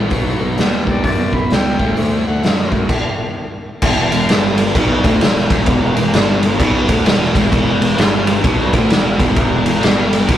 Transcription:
0.00 0.11 G#3 medium
0.00 0.10 B3 medium
0.10 0.36 B1 medium
0.10 1.77 B2 medium
0.10 1.78 F#3 medium
0.10 1.78 B3 medium
0.10 1.79 D#4 medium
0.10 kick loud
0.10 open hi-hat soft
0.41 0.55 B1 medium
0.58 0.83 D#2 medium
0.58 snare loud
0.58 open hi-hat soft
0.87 1.02 D#2 medium
0.87 kick medium
0.91 1.04 D5 medium
1.04 1.43 F#2 medium
1.04 1.39 D5 medium
1.04 kick medium
1.04 open hi-hat medium
1.33 kick medium
1.38 1.51 B5 medium
1.50 1.76 C#2 medium
1.50 1.97 G5 medium
1.50 snare loud
1.50 open hi-hat soft
1.79 1.94 D2 medium
1.79 2.88 D3 medium
1.79 2.88 F#3 medium
1.79 2.89 A3 medium
1.79 2.89 D4 loud
1.79 kick medium
1.97 2.22 D2 medium
1.97 open hi-hat soft
2.27 2.41 D2 medium
2.27 2.72 F#5 loud
2.43 2.69 F#2 medium
2.43 snare loud
2.43 open hi-hat soft
2.72 2.87 F#2 medium
2.72 kick medium
2.89 kick loud
2.89 crash medium
3.82 4.09 E1 medium
3.82 4.10 E2 loud
3.82 kick loud
3.82 crash loud
4.11 4.29 E1 medium
4.11 4.25 E2 medium
4.11 ride medium
4.29 4.72 G1 medium
4.29 4.74 G2 loud
4.29 snare loud
4.29 ride loud
4.58 ride medium
4.75 5.02 B1 medium
4.75 5.03 B2 loud
4.75 kick loud
4.75 ride loud
5.04 5.20 D2 loud
5.04 5.21 D3 loud
5.04 kick loud
5.04 ride medium
5.21 5.49 E1 medium
5.21 5.44 E2 medium
5.21 snare loud
5.21 ride medium
5.37 snare soft
5.50 5.66 E1 medium
5.50 5.67 E2 loud
5.50 kick loud
5.50 ride medium
5.66 5.94 E1 medium
5.66 5.95 E2 loud
5.66 kick loud
5.66 ride loud
5.96 6.13 E1 medium
5.96 6.10 E2 medium
5.96 ride medium
6.13 6.57 G1 medium
6.13 6.59 G2 loud
6.13 snare loud
6.13 ride loud
6.43 ride medium
6.59 6.87 B1 medium
6.59 6.87 B2 loud
6.59 kick loud
6.59 ride loud
6.89 7.05 D2 loud
6.89 7.06 D3 loud
6.89 kick loud
6.89 ride medium
7.06 7.33 E1 medium
7.06 7.30 E2 medium
7.06 snare loud
7.06 ride loud
7.23 snare soft
7.35 7.51 E1 loud
7.35 7.50 E2 loud
7.35 kick loud
7.35 ride medium
7.52 7.79 E1 medium
7.52 7.80 E2 loud
7.52 kick loud
7.52 ride loud
7.80 7.96 E1 medium
7.80 7.94 E2 medium
7.80 ride medium
7.96 8.40 G1 medium
7.96 8.43 G2 loud
7.96 snare loud
7.96 ride medium
8.27 ride medium
8.43 8.71 B1 medium
8.43 8.72 B2 loud
8.43 kick loud
8.43 ride loud
8.73 8.89 D2 loud
8.73 8.89 D3 loud
8.73 kick loud
8.73 ride medium
8.90 9.18 E1 medium
8.90 9.14 E2 medium
8.90 snare loud
8.90 ride medium
9.19 9.36 E1 loud
9.19 9.34 E2 loud
9.19 kick loud
9.19 ride medium
9.35 9.64 E1 medium
9.35 9.64 E2 loud
9.35 kick loud
9.35 ride medium
9.66 9.82 E1 medium
9.66 9.81 E2 medium
9.66 ride medium
9.81 10.26 G1 medium
9.81 10.27 G2 loud
9.81 snare loud
9.81 ride medium
10.13 ride medium
10.27 10.38 B1 medium
10.27 10.38 B2 loud
10.27 kick loud
10.27 ride loud

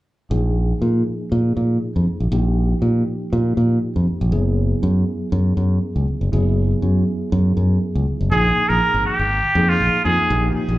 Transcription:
0.30 0.72 A#1 medium
0.30 2.27 F3 soft
0.30 2.28 A#3 soft
0.30 2.28 D#4 soft
0.30 2.28 G#4 soft
0.82 1.02 A#2 medium
1.32 1.52 A#2 medium
1.57 1.77 A#2 medium
1.96 2.05 F2 medium
2.07 muted fingered electric bass stroke soft
2.20 2.30 A#1 medium
2.32 2.73 A#1 medium
2.32 4.28 F3 medium
2.32 4.28 A#3 soft
2.32 4.28 D#4 soft
2.32 4.29 G4 medium
2.82 3.02 A#2 medium
3.33 3.53 A#2 medium
3.57 3.78 A#2 medium
3.96 4.05 F2 medium
4.08 muted fingered electric bass stroke soft
4.21 4.30 A#1 medium
4.32 4.73 F#1 medium
4.32 6.28 F#3 medium
4.32 6.28 B3 soft
4.32 6.28 E4 soft
4.32 6.28 G#4 medium
4.83 5.03 F#2 medium
5.32 5.53 F#2 medium
5.57 5.78 F#2 medium
5.96 6.05 C#2 medium
6.08 muted fingered electric bass stroke soft
6.21 6.30 F#1 medium
6.32 6.73 F#1 medium
6.32 8.28 F#3 medium
6.32 8.28 B3 soft
6.32 8.28 E4 soft
6.32 8.28 G#4 medium
6.82 7.03 F#2 medium
7.32 7.53 F#2 medium
7.57 7.77 F#2 medium
7.95 8.05 C#2 medium
8.07 muted fingered electric bass stroke soft
8.21 8.30 F#1 medium
8.31 8.52 A#1 medium
8.31 9.21 F3 medium
8.31 9.21 A#3 soft
8.31 9.22 D#4 medium
8.31 9.21 G#4 medium
8.31 8.70 G#4 medium
8.57 muted fingered electric bass stroke soft
8.69 8.79 A#1 medium
8.69 9.05 A#4 medium
8.94 9.04 G#1 medium
9.06 9.71 G4 medium
9.19 9.40 G#1 medium
9.44 muted fingered electric bass stroke soft
9.55 9.76 F2 medium
9.55 10.01 F3 medium
9.55 10.01 A#3 medium
9.55 10.01 D#4 medium
9.55 10.01 G#4 medium
9.69 10.04 F4 medium
9.80 9.92 A#1 medium
9.93 muted fingered electric bass stroke soft
10.05 10.17 F2 medium
10.05 10.28 F3 medium
10.05 10.28 A#3 medium
10.05 10.28 D#4 soft
10.05 10.28 F4 medium
10.05 10.51 G#4 medium
10.30 10.51 A#1 medium
10.30 10.78 F3 medium
10.30 10.78 A#3 medium
10.30 10.78 D#4 medium
10.30 10.78 G4 medium
10.55 muted fingered electric bass stroke soft
10.68 10.78 A#1 medium

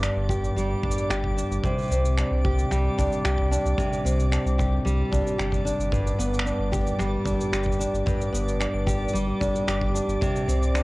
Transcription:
0.00 1.64 G2 medium
0.00 0.56 G3 medium
0.00 1.69 B3 medium
0.00 0.83 D4 medium
0.00 0.29 G4 medium
0.00 5.92 D5 medium
0.00 5.92 D6 medium
0.00 finger snap medium
0.04 shaker soft
0.16 0.49 G1 medium
0.29 1.10 G4 medium
0.29 kick medium
0.29 shaker medium
0.44 shaker soft
0.56 0.74 G1 medium
0.56 2.71 G3 medium
0.56 shaker soft
0.83 0.92 G1 medium
0.83 1.37 D4 medium
0.83 kick loud
0.91 shaker medium
0.98 shaker soft
1.10 1.43 G1 medium
1.10 2.44 G4 medium
1.10 finger snap medium
1.10 shaker soft
1.24 kick medium
1.37 1.94 D4 medium
1.37 shaker medium
1.51 1.60 G1 medium
1.51 shaker soft
1.64 3.77 C3 medium
1.64 kick loud
1.64 shaker soft
1.78 shaker soft
1.81 shaker soft
1.83 shaker soft
1.85 shaker soft
1.88 shaker soft
1.90 2.24 C2 loud
1.90 4.04 C4 medium
1.90 shaker soft
1.92 shaker medium
2.05 shaker soft
2.18 2.98 D4 medium
2.18 finger snap medium
2.18 shaker soft
2.31 2.64 C2 medium
2.44 3.24 G4 medium
2.44 kick medium
2.59 shaker soft
2.71 2.89 C2 medium
2.71 4.84 G3 medium
2.71 finger snap soft
2.71 shaker soft
2.98 3.07 C2 medium
2.98 3.51 D4 medium
2.98 kick medium
2.98 shaker medium
3.12 shaker soft
3.25 3.58 C2 medium
3.25 4.58 G4 medium
3.25 finger snap medium
3.25 shaker soft
3.38 kick soft
3.51 4.31 D4 medium
3.51 shaker medium
3.65 3.74 C2 medium
3.65 shaker soft
3.78 5.92 C3 medium
3.78 kick loud
3.78 shaker soft
3.93 shaker soft
4.05 4.38 C2 medium
4.05 5.98 C4 medium
4.05 shaker medium
4.20 shaker soft
4.31 5.11 D4 medium
4.31 finger snap medium
4.31 shaker soft
4.46 4.78 C2 medium
4.46 shaker soft
4.58 5.38 G4 medium
4.58 finger snap soft
4.58 kick medium
4.58 shaker medium
4.85 5.03 C2 medium
4.85 6.98 G3 medium
4.85 shaker soft
5.11 5.21 C2 medium
5.11 5.64 D4 medium
5.11 kick medium
5.11 shaker medium
5.27 shaker soft
5.38 5.72 G1 medium
5.38 6.72 G4 medium
5.38 finger snap medium
5.38 shaker soft
5.52 kick medium
5.52 shaker soft
5.65 6.45 D4 medium
5.65 shaker medium
5.79 6.12 G1 medium
5.79 shaker soft
5.92 8.05 G2 medium
5.92 10.83 D5 medium
5.92 10.83 D6 medium
5.92 kick loud
5.92 shaker soft
6.07 shaker soft
6.19 6.52 G1 medium
6.19 8.31 B3 medium
6.19 shaker medium
6.34 shaker soft
6.39 finger snap loud
6.45 7.25 D4 medium
6.45 shaker soft
6.59 6.92 G1 loud
6.72 7.52 G4 medium
6.72 kick loud
6.72 shaker medium
6.87 shaker soft
6.99 7.17 G1 medium
6.99 9.13 G3 medium
6.99 finger snap soft
6.99 shaker soft
7.26 7.35 G1 medium
7.26 7.79 D4 medium
7.26 kick medium
7.26 shaker medium
7.41 shaker soft
7.53 7.86 G1 medium
7.53 8.86 G4 medium
7.53 finger snap loud
7.53 shaker soft
7.63 kick medium
7.63 shaker soft
7.72 shaker soft
7.79 8.59 D4 medium
7.79 shaker medium
7.93 8.02 G1 medium
7.93 shaker soft
8.06 10.21 G2 medium
8.06 kick loud
8.06 shaker soft
8.22 shaker soft
8.33 8.66 G1 medium
8.33 10.26 B3 medium
8.33 shaker medium
8.48 shaker soft
8.60 9.40 D4 medium
8.60 finger snap medium
8.60 shaker soft
8.74 9.07 G1 medium
8.87 9.67 G4 medium
8.87 kick loud
8.87 shaker medium
9.08 shaker soft
9.13 9.32 G1 medium
9.13 10.83 G3 medium
9.13 shaker soft
9.40 9.50 G1 medium
9.40 9.94 D4 medium
9.40 kick loud
9.40 shaker medium
9.55 shaker soft
9.67 10.00 G1 medium
9.67 10.83 G4 medium
9.67 finger snap medium
9.67 shaker soft
9.81 kick medium
9.94 10.51 D4 medium
9.94 shaker medium
10.08 10.17 G1 medium
10.08 shaker soft
10.21 10.83 C3 medium
10.21 kick loud
10.21 shaker soft
10.36 shaker soft
10.48 10.81 C2 medium
10.48 10.83 C4 medium
10.48 shaker medium
10.63 shaker soft
10.74 10.83 D4 medium
10.74 finger snap medium
10.74 shaker soft

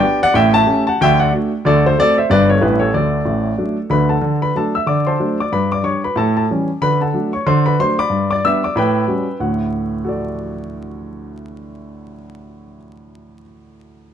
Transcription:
0.00 0.21 B3 medium
0.00 0.22 D4 soft
0.00 0.21 D5 medium
0.00 0.18 G5 loud
0.04 0.22 G4 medium
0.23 0.35 D5 medium
0.23 0.34 F#5 loud
0.34 0.62 A1 medium
0.34 0.62 A2 medium
0.34 0.54 E5 medium
0.34 0.52 G5 loud
0.54 0.85 E5 medium
0.54 0.82 A5 loud
0.67 0.85 A3 medium
0.67 0.85 C#4 medium
0.67 0.85 G4 medium
0.87 1.00 F#5 medium
0.87 0.98 A5 medium
1.01 1.28 D2 medium
1.01 1.28 D3 medium
1.01 1.20 E5 medium
1.01 1.17 G5 loud
1.20 1.33 D5 medium
1.20 1.31 F#5 medium
1.33 1.50 A3 medium
1.33 1.50 D4 soft
1.33 1.51 F#4 medium
1.65 1.92 D2 medium
1.65 1.92 D3 medium
1.65 1.84 A4 medium
1.65 1.82 D5 loud
1.86 1.98 A4 medium
1.86 1.97 C5 medium
1.98 2.16 A3 soft
1.98 2.16 C4 soft
1.98 2.16 F#4 medium
1.98 2.17 A4 medium
1.98 2.15 D5 loud
2.18 2.30 C5 medium
2.18 2.28 E5 medium
2.30 2.57 G1 medium
2.30 2.57 G2 medium
2.30 2.47 G3 soft
2.30 2.47 B3 soft
2.30 2.48 G4 soft
2.30 2.49 B4 medium
2.30 2.46 D5 loud
2.50 2.62 A4 medium
2.50 2.60 C#5 medium
2.61 2.89 A1 medium
2.61 2.89 A2 medium
2.61 2.79 G3 soft
2.61 2.80 A3 soft
2.61 2.80 E4 soft
2.61 2.80 G4 medium
2.61 2.78 B4 medium
2.80 2.93 A4 medium
2.80 2.91 C#5 medium
2.94 3.19 D2 medium
2.94 3.20 D3 medium
2.94 3.87 A4 medium
2.94 3.76 D5 medium
3.25 3.51 A1 medium
3.25 3.51 A2 medium
3.58 3.76 F#3 soft
3.58 3.76 A3 soft
3.58 3.76 D4 soft
3.89 4.16 D2 medium
3.89 4.16 D3 medium
3.89 4.09 B4 medium
3.89 4.07 B5 medium
4.09 4.40 A4 soft
4.09 4.40 F#5 soft
4.09 4.37 A5 medium
4.21 4.49 D3 medium
4.42 4.55 B4 medium
4.42 4.53 B5 medium
4.55 4.73 F#3 soft
4.55 4.73 A3 soft
4.55 4.74 D4 medium
4.55 4.74 A4 medium
4.55 4.72 A5 medium
4.75 4.88 E5 medium
4.75 4.86 E6 medium
4.86 5.14 D3 medium
4.86 5.06 D5 medium
4.86 5.03 D6 medium
5.07 5.37 C5 medium
5.07 5.37 A5 medium
5.07 5.34 C6 medium
5.19 5.37 F#3 soft
5.19 5.38 A3 soft
5.19 5.38 D4 soft
5.40 5.53 D5 medium
5.40 5.51 D6 medium
5.52 5.79 G2 medium
5.52 5.70 B4 medium
5.52 5.68 B5 medium
5.72 5.85 D5 medium
5.72 5.83 D6 medium
5.83 6.01 G3 soft
5.83 6.01 D4 soft
5.83 6.02 C#5 medium
5.83 6.00 C#6 medium
6.04 6.16 B4 soft
6.04 6.15 B5 medium
6.16 6.43 A2 medium
6.16 6.35 A4 medium
6.16 6.33 A5 medium
6.37 6.49 A4 soft
6.37 6.47 A5 medium
6.50 6.68 E3 soft
6.50 6.68 G3 soft
6.50 6.68 C#4 medium
6.82 7.09 D3 medium
6.82 7.00 B4 medium
6.82 6.97 B5 medium
7.01 7.31 A4 soft
7.01 7.31 F#5 soft
7.01 7.28 A5 medium
7.13 7.31 F#3 soft
7.13 7.31 A3 soft
7.13 7.31 D4 soft
7.33 7.46 C#5 medium
7.33 7.44 C#6 medium
7.46 7.73 D3 medium
7.46 7.64 C5 medium
7.46 7.62 C6 medium
7.66 7.78 B4 medium
7.66 7.76 B5 medium
7.79 7.96 F#3 soft
7.79 7.97 A3 soft
7.79 7.97 D4 medium
7.79 7.97 C5 medium
7.79 7.95 C6 medium
7.99 8.28 D5 medium
7.99 8.28 B5 medium
7.99 8.25 D6 loud
8.10 8.37 G2 medium
8.31 8.43 D5 medium
8.31 8.41 D6 medium
8.44 8.62 G3 soft
8.44 8.62 B3 medium
8.44 8.62 D4 medium
8.44 8.62 E5 medium
8.44 8.60 E6 loud
8.64 8.76 D5 soft
8.64 8.74 D6 medium
8.76 9.03 A2 medium
8.76 9.37 B4 medium
8.76 9.37 G5 medium
8.76 9.31 B5 medium
9.08 9.25 G3 soft
9.08 9.25 C#4 soft
9.08 9.25 F#4 soft
9.40 12.75 D2 medium
9.40 12.76 A2 medium
9.40 12.76 F#5 medium
10.05 13.40 F#4 soft
10.05 13.42 A4 soft
10.09 13.44 D5 soft

